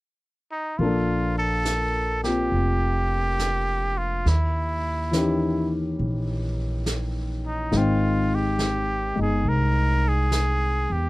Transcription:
0.52 D#4
0.78 A#1 F3 A#3 F4, brush sweep
0.83 D4 A4
1.39 A4
1.65 snare, hi-hat pedal
2.23 A#3 C4 F4 G4, snare
2.52 F1, brush sweep
3.39 snare, hi-hat pedal
3.98 F4
4.26 D#2 E4, brush sweep, snare
5.11 E3 C#4, snare, hi-hat pedal
5.15 D#3 G4
5.99 A#1, brush sweep
6.86 snare, hi-hat pedal
7.47 D#4
7.72 G#1 D#3 G#3 C4, brush sweep, snare
7.77 F4 G5
8.35 G4
8.59 snare, hi-hat pedal
9.16 G1 G#3 D#4
9.22 G#4
9.45 C2 A#4, brush sweep
10.08 G#4
10.32 snare, hi-hat pedal
10.90 E2 G4

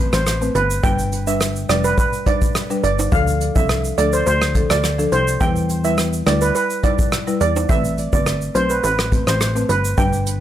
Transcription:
Already playing: A3 C4
0.00 B4
0.13 A1 C5, cross-stick, shaker
0.26 cross-stick, shaker
0.41 A3 C4 B4, shaker
0.55 G1 B4, closed hi-hat, shaker
0.70 shaker
0.83 G1 G3 D4 B4 G5, kick, shaker
0.99 shaker
1.12 closed hi-hat, shaker
1.27 G3 D4 B4 E5, shaker
1.41 cross-stick, shaker
1.56 shaker
1.69 F1 G3 D4 B4 D5, cross-stick, closed hi-hat, shaker
1.84 B4, shaker
1.98 B4, kick, shaker
2.13 shaker
2.26 G3 D4 B4 D5, kick, closed hi-hat, high timbale, shaker
2.42 kick, shaker
2.55 cross-stick, shaker
2.70 G3 D4 B4, shaker
2.84 G1 D5, closed hi-hat, shaker
2.99 high timbale, shaker
3.12 D2 F3 D4 A4 F5, kick, shaker
3.27 shaker
3.41 closed hi-hat, shaker
3.56 C2 F3 D4 A4 E5, kick, shaker
3.69 cross-stick, shaker
3.84 shaker
3.98 D2 F3 D4 A4 D5, closed hi-hat, shaker
4.13 C5, shaker
4.27 D2 C5, shaker
4.42 cross-stick, shaker
4.55 F3 D4 A4, kick, closed hi-hat, shaker
4.70 D2 D5, cross-stick, shaker
4.84 cross-stick, shaker
4.99 F3 D4 A4, shaker
5.12 C2 C5, closed hi-hat, shaker
5.28 shaker
5.40 E2 G3 E4 B4 G5, kick, shaker
5.56 shaker
5.70 closed hi-hat, shaker
5.84 G3 E4 B4 E5, shaker
5.98 cross-stick, shaker
6.13 shaker
6.26 D2 G3 E4 B4 D5, cross-stick, closed hi-hat, shaker
6.41 B4, shaker
6.55 B4, shaker
6.70 shaker
6.83 G3 E4 B4 D5, kick, closed hi-hat, high timbale, shaker
6.99 kick, shaker
7.12 cross-stick, shaker
7.27 G3 E4 B4, shaker
7.41 E2 D5, closed hi-hat, shaker
7.56 high timbale, shaker
7.69 A1 A3 C4 B4 E5, kick, shaker
7.84 shaker
7.98 closed hi-hat, shaker
8.13 G1 A3 C4 B4 D5, kick, shaker
8.26 cross-stick, shaker
8.42 shaker
8.55 B1 A3 C4 B4 C5, closed hi-hat, shaker
8.70 B4, shaker
8.84 A1 B4, shaker
8.99 cross-stick, shaker
9.12 A3 C4 B4, kick, closed hi-hat, shaker
9.27 A1 C5, cross-stick, shaker
9.41 cross-stick, shaker
9.56 A3 C4 B4, shaker
9.69 G1 B4, closed hi-hat, shaker
9.85 shaker
9.98 G1 G3 D4 B4 G5, kick, shaker
10.13 shaker
10.26 closed hi-hat, shaker

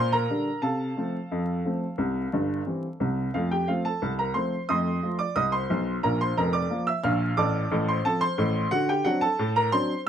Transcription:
Already playing: A#2 C5 C6
0.12 A#4 A#5
0.30 D3 G3 D4
0.62 C3 A4 F5 A5
0.97 F3 A3 C4
1.32 F2
1.65 F3 A3 C4
1.98 C2 C3
2.33 G1 G2
2.66 E3 G3 C4
3.00 C2 C3
3.34 F2 A3 F4 F5
3.51 G4 G5
3.68 F3 A3 C4 F4 F5
3.85 A4 A5
4.02 C2
4.19 A#4 A#5
4.34 F3 A3 C4 C5 C6
4.69 F2 A3 D#5 C6 D#6
5.03 F3 A3 F4
5.19 D5 D6
5.36 C2 D#5 D#6
5.52 C5 C6
5.70 B1 B2
6.03 A#1 A#2 A#4 A#5
6.21 C5 C6
6.37 F1 F2 A#4 A#5
6.53 D5 D6
6.70 F3 A#3 F4
6.87 E5 E6
7.04 A#1 A#2 F5 F6
7.37 A1 A2 D5 A5 D6
7.71 A1 A2
7.88 C5 C6
8.05 F3 C4 A4 A5
8.21 C5 C6
8.38 A1 A2
8.71 D3 F#4 F#5
8.89 G4 G5
9.05 F#3 C4 D4 F#4 F#5
9.21 A4 A5
9.39 A2
9.56 A#4 A#5
9.72 F#3 C4 D4 C5 C6

